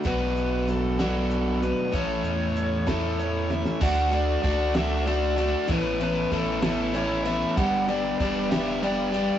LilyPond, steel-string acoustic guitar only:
\new Staff \with { instrumentName = "Steel-string acoustic guitar" } { \time 6/8 \key d \major \tempo 4. = 64 <b, fis b d' fis'>4 <fis b d' fis'>8 <b, fis b d' fis'>4 <b d' fis'>8 | <a, e a cis' e'>4 <e a cis' e'>8 <a, e a cis' e'>4 <a cis' e'>8 | <d a d' fis'>8 <a d' fis'>8 <a d' fis'>8 <a d' fis'>8 <a d' fis'>8 <a d' fis'>8 | <a, e b cis' e'>8 <b cis' e'>8 <e b cis' e'>8 <a, e b cis' e'>8 <e b cis' e'>8 <b cis' e'>8 |
<g, d g b d' g'>8 <g b d' g'>8 <g b d' g'>8 <g, d g b d' g'>8 <g b d' g'>8 <g b d' g'>8 | }